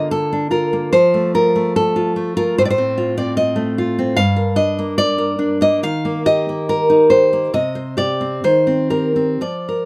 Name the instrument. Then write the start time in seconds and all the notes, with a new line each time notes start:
nylon-string guitar
Already playing: D3 A#3 F4 D#5
0.11 A4
0.33 D4
0.51 F4 A#4
0.73 A#3
0.93 F3 C5
1.14 A3
1.34 F4 A#4
1.55 A3
1.76 A4
1.96 F4
2.16 A3
2.37 F4 A#4
2.58 A2 C5
2.65 D5
2.70 C5
2.78 C4
2.98 F4
3.18 C4 D5
3.37 D#5
3.56 A3
3.78 F4
3.99 C4
4.16 G2 F5
4.36 A#4
4.56 D4 D#5
4.79 A#3
4.98 D5
5.18 A#4
5.39 D4
5.61 A#3 D#5
5.83 D#3 F5
6.05 A#3
6.26 G4 D#5
6.49 A#3
6.69 A#4
6.90 D#4
7.10 G4 C5
7.33 A#3
7.54 C3 D#5
7.75 C5
7.97 G4 D5
8.21 C4
8.44 D#3 C5
8.67 C4
8.90 G4 A#4
9.16 C4
9.41 F3 D5
9.69 A#4